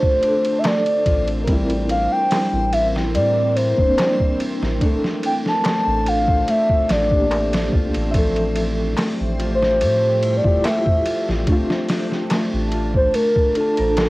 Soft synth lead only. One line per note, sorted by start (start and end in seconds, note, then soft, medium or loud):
0.00 0.60 C5 loud
0.59 0.67 E5 medium
0.66 1.29 D5 loud
1.90 2.13 F5 loud
2.12 2.72 G5 loud
2.73 2.87 E5 loud
3.15 3.58 D5 loud
3.56 4.40 C5 loud
5.26 5.35 G5 medium
5.48 6.10 A5 loud
6.08 6.51 F5 loud
6.50 6.93 E5 loud
6.92 7.74 D5 medium
9.55 10.38 C5 loud
10.37 10.66 D5 medium
10.65 11.28 E5 loud
12.96 13.14 C5 loud
13.14 13.58 A#4 loud
13.56 14.09 A4 loud